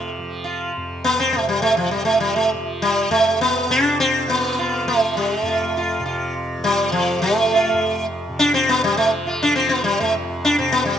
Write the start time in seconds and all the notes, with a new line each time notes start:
Already playing: F2 C3 F3
0.19 F3
0.44 F4
0.77 F2
1.04 B3
1.20 C4
1.33 C3 A3
1.49 G3
1.62 A3
1.77 F3
1.91 F3 G3
2.05 A3
2.20 G3
2.36 A3
2.53 F3
2.82 G3
3.10 F2 A3
3.41 B3
3.69 C3 D4
4.00 C4
4.27 F3 B3
4.59 F4
4.85 F3 A3
5.17 G3
5.42 F2 A3
5.47 F4
5.77 F4
6.00 C3
6.06 F4
6.58 F3
6.64 G3
6.92 F3
7.16 F3
7.22 A3
7.54 F4
7.73 F2
8.29 C3
8.39 D4
8.54 C4
8.69 B3
8.84 F3 G3
8.97 A3
9.27 F4
9.43 F3 D4
9.56 C4
9.69 B3
9.84 G3
10.00 F2 A3
10.45 D4
10.59 C3 C4
10.72 B3
10.85 G3